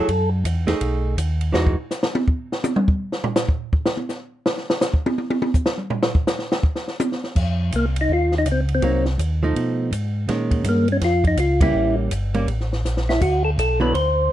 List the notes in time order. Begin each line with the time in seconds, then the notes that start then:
Already playing: A4
0.08 F#2, kick, ride
0.44 E2, kick, hi-hat pedal, ride
0.67 E2 A3 D#4 G#4, snare, ride
0.80 B1, kick, ride
1.17 D#2, kick, hi-hat pedal, ride
1.41 ride
1.53 E2 E3 G#3 D#4 F#4, snare
1.67 kick
1.91 snare, hi-hat pedal
2.03 snare
2.15 high tom
2.28 kick
2.52 snare
2.64 hi-hat pedal, high tom
2.76 mid tom
2.88 kick
3.12 snare
3.24 floor tom
3.36 snare, hi-hat pedal
3.49 kick
3.73 kick
3.86 snare
3.97 high tom
4.09 snare, hi-hat pedal
4.46 snare
4.58 snare
4.70 snare
4.81 snare, hi-hat pedal
4.94 kick
5.06 high tom
5.18 high tom
5.30 high tom
5.42 high tom
5.54 kick, hi-hat pedal
5.66 snare
5.78 mid tom
5.90 floor tom
6.03 snare
6.15 kick
6.27 snare, hi-hat pedal
6.39 snare
6.52 snare
6.63 kick
6.76 snare
6.88 snare
7.00 hi-hat pedal, high tom
7.12 snare
7.24 snare
7.35 F2, kick, crash
7.72 C2 A#3, kick, hi-hat pedal, ride
7.96 ride
8.01 D#4
8.09 D#2 F4, kick
8.32 snare
8.38 D#4
8.46 C#2, kick, hi-hat pedal, ride
8.52 C4
8.69 ride
8.75 C4
8.82 C2 F#3 A#3 D#4, kick, ride
9.05 snare
9.18 D#2, kick, hi-hat pedal, ride
9.43 F3 A3 D#4
9.55 B2, kick, ride
9.91 G#2, kick, hi-hat pedal, ride
10.28 A#2 D#3 G#3 C#4, kick, snare, ride
10.51 kick, ride
10.64 G2, kick, hi-hat pedal, ride
10.69 A#3
10.88 ride
10.92 C#4
11.01 F2 F4, kick, snare, ride
11.24 D#4, kick, ride
11.37 C#2 F4, kick, hi-hat pedal, ride
11.61 G3 A#3 C#4 E4, kick, ride
11.74 A1
12.10 G1, kick, hi-hat pedal, ride
12.34 G3 A#3 C#4, ride
12.48 A1, kick, ride
12.61 snare
12.73 snare
12.83 A#1, snare, hi-hat pedal
12.97 snare
13.09 E4, snare
13.21 D2 F#4, kick, crash
13.45 A4
13.58 B1 A4, kick, hi-hat pedal, ride
13.80 D3 F#3 B3 E4 B4
13.94 D2 C5, kick, ride